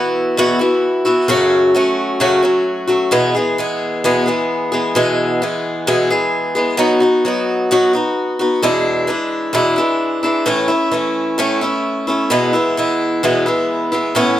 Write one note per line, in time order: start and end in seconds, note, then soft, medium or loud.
0.00 0.37 E3 medium
0.00 0.37 B3 medium
0.00 0.38 E4 medium
0.00 0.39 F#4 medium
0.37 0.60 E2 medium
0.37 0.61 B2 medium
0.37 0.61 E3 medium
0.37 0.60 B3 medium
0.37 0.60 E4 medium
0.37 0.58 F#4 medium
0.59 1.06 E3 soft
0.59 1.05 B3 soft
0.59 1.04 E4 medium
0.59 1.04 F#4 medium
1.05 1.29 E3 soft
1.05 1.29 B3 soft
1.05 1.29 E4 soft
1.05 1.28 F#4 soft
1.28 1.74 F#2 medium
1.28 1.74 C#3 medium
1.28 1.73 F#3 medium
1.28 1.74 A3 medium
1.28 1.75 C#4 medium
1.28 1.75 F#4 medium
1.75 2.20 F#3 medium
1.75 2.20 A3 medium
1.75 2.20 C#4 medium
1.75 2.20 F#4 medium
2.20 2.43 F#2 medium
2.20 2.43 C#3 medium
2.20 2.44 F#3 medium
2.20 2.43 A3 medium
2.20 2.42 C#4 medium
2.20 2.41 F#4 medium
2.43 2.89 F#3 soft
2.43 2.88 A3 soft
2.43 2.87 C#4 soft
2.43 2.86 F#4 medium
2.88 3.12 F#3 soft
2.88 3.11 A3 soft
2.88 3.12 C#4 soft
2.88 3.11 F#4 soft
3.11 3.35 E2 medium
3.11 3.35 B2 medium
3.11 3.35 E3 medium
3.11 3.35 G#3 medium
3.11 3.35 B3 medium
3.11 3.33 G#4 medium
3.35 3.57 E3 soft
3.35 3.58 G#3 soft
3.35 3.59 B3 soft
3.35 3.58 G#4 soft
3.58 4.04 E3 medium
3.58 4.04 G#3 medium
3.58 4.05 B3 medium
3.58 4.04 G#4 medium
4.04 4.27 E2 medium
4.04 4.27 B2 medium
4.04 4.28 E3 medium
4.04 4.27 G#3 medium
4.04 4.26 B3 medium
4.04 4.25 G#4 medium
4.26 4.73 E3 soft
4.26 4.72 G#3 soft
4.26 4.73 B3 soft
4.26 4.71 G#4 medium
4.72 4.95 E3 soft
4.72 4.95 G#3 soft
4.72 4.95 B3 soft
4.72 4.95 G#4 medium
4.95 5.41 E2 medium
4.95 5.42 B2 medium
4.95 5.41 E3 medium
4.95 5.42 G#3 medium
4.95 5.43 B3 medium
4.95 5.42 G#4 medium
5.42 5.86 E3 medium
5.42 5.86 G#3 medium
5.42 5.88 B3 medium
5.42 5.87 G#4 medium
5.87 6.11 E2 medium
5.87 6.11 B2 medium
5.87 6.11 E3 medium
5.87 6.11 G#3 medium
5.87 6.10 B3 medium
5.87 6.09 G#4 medium
6.10 6.57 E3 soft
6.10 6.55 G#3 soft
6.10 6.56 B3 soft
6.10 6.54 G#4 medium
6.55 6.77 E3 soft
6.55 6.78 G#3 soft
6.55 6.77 B3 soft
6.55 6.79 G#4 medium
6.77 7.02 B2 medium
6.77 7.02 F#3 medium
6.77 7.02 B3 medium
6.77 7.01 D#4 medium
6.77 6.99 F#4 medium
7.00 7.25 B3 soft
7.00 7.25 D#4 soft
7.00 7.24 F#4 soft
7.25 7.70 F#3 medium
7.25 7.71 B3 medium
7.25 7.71 D#4 medium
7.25 7.71 F#4 medium
7.71 7.94 B2 medium
7.71 7.95 F#3 medium
7.71 7.95 B3 medium
7.71 7.93 D#4 medium
7.71 7.92 F#4 medium
7.93 8.40 B3 soft
7.93 8.40 D#4 soft
7.93 8.38 F#4 medium
8.39 8.63 B3 soft
8.39 8.64 D#4 soft
8.39 8.63 F#4 medium
8.62 9.09 E2 medium
8.62 9.09 B2 medium
8.62 9.07 E3 medium
8.62 9.07 G#3 medium
8.62 9.08 D4 medium
8.62 9.10 E4 medium
9.07 9.54 E3 medium
9.07 9.53 G#3 medium
9.07 9.53 D4 medium
9.07 9.54 E4 medium
9.53 9.77 E2 medium
9.53 9.78 B2 medium
9.53 9.78 E3 medium
9.53 9.77 G#3 medium
9.53 9.77 D4 medium
9.53 9.75 E4 medium
9.76 10.25 E3 soft
9.76 10.23 G#3 soft
9.76 10.23 D4 medium
9.76 10.22 E4 medium
10.23 10.45 E3 soft
10.23 10.46 G#3 soft
10.23 10.47 D4 soft
10.23 10.47 E4 soft
10.46 10.70 A2 medium
10.46 10.70 E3 medium
10.46 10.69 A3 medium
10.46 10.68 C#4 medium
10.46 10.67 E4 medium
10.68 10.91 A3 soft
10.68 10.92 C#4 soft
10.68 10.92 E4 soft
10.92 11.38 E3 medium
10.92 11.38 A3 medium
10.92 11.39 C#4 medium
10.92 11.39 E4 medium
11.38 11.62 A2 medium
11.38 11.62 E3 medium
11.38 11.62 A3 medium
11.38 11.61 C#4 medium
11.38 11.60 E4 medium
11.61 12.08 A3 soft
11.61 12.07 C#4 soft
11.61 12.07 E4 medium
12.07 12.31 A3 soft
12.07 12.31 C#4 soft
12.07 12.31 E4 soft
12.30 12.54 E2 medium
12.30 12.54 B2 medium
12.30 12.54 E3 medium
12.30 12.54 G#3 medium
12.30 12.53 B3 medium
12.30 12.52 E4 medium
12.53 12.76 E3 soft
12.53 12.77 G#3 soft
12.53 12.77 B3 soft
12.53 12.77 E4 soft
12.77 13.23 E3 medium
12.77 13.23 G#3 medium
12.77 13.24 B3 medium
12.77 13.25 E4 medium
13.23 13.46 E2 medium
13.23 13.46 B2 medium
13.23 13.46 E3 medium
13.23 13.47 G#3 medium
13.23 13.46 B3 medium
13.23 13.45 E4 medium
13.46 13.93 E3 soft
13.46 13.93 G#3 soft
13.46 13.92 B3 soft
13.46 13.91 E4 medium
13.92 14.14 E3 soft
13.92 14.16 G#3 soft
13.92 14.15 B3 medium
13.92 14.15 E4 soft
14.15 14.38 A2 medium
14.15 14.38 E3 medium
14.15 14.39 B3 medium
14.15 14.38 C#4 medium
14.15 14.37 E4 medium